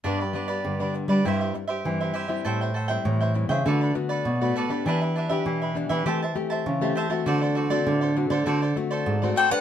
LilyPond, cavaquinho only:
\new Staff \with { instrumentName = "Cavaquinho" } { \time 4/4 \key g \major \tempo 4 = 100 <d' g' b' d''>16 <g' b' d''>16 <d' g' b' d''>16 <g' b' d''>8 <g' b' d''>16 r16 <g' b' d''>16 <e' g' c'' e''>16 <g' c'' e''>16 r16 <g' c'' e''>8 <g' c'' e''>16 <e' g' c'' e''>16 <g' c'' e''>16 | <a' c'' e'' g''>16 <c'' e'' g''>16 <a' c'' e'' g''>16 <c'' e'' g''>8 <c'' e'' g''>16 r16 <c'' e'' g''>16 <fis' a' b' d''>16 <a' b' d''>16 r16 <a' b' d''>8 <a' b' d''>16 <fis' a' b' d''>16 <a' b' d''>16 | <d' g' b' e''>16 <g' b' e''>16 <d' g' b' e''>16 <g' b' e''>8 <g' b' e''>16 r16 <g' b' e''>16 <g' c'' e'' a''>16 <c'' e'' a''>16 r16 <c'' e'' a''>8 <c'' e'' a''>16 <g' c'' e'' a''>16 <c'' e'' a''>16 | <fis' a' c'' d''>16 <a' c'' d''>16 <fis' a' c'' d''>16 <a' c'' d''>8 <a' c'' d''>16 r16 <a' c'' d''>16 <fis' a' c'' d''>16 <a' c'' d''>16 r16 <a' c'' d''>8 <a' c'' d''>16 <fis' a' c'' d''>16 <a' c'' d''>16 | }